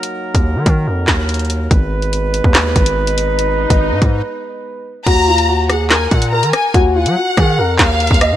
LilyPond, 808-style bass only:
\new Staff \with { instrumentName = "808-style bass" } { \clef bass \time 4/4 \key ees \minor \tempo 4 = 143 r8. ees,8 ees16 ees8 f,8 ees,4. | aes,,4.~ aes,,16 ees,8. aes,,4.~ | aes,,8. aes,,8 aes,16 aes,8 r2 | ees,2~ ees,8 bes,8. ees16 r8 |
ees,8. ges16 r8 ees8 f,8 ees,8. ees,8 bes,16 | }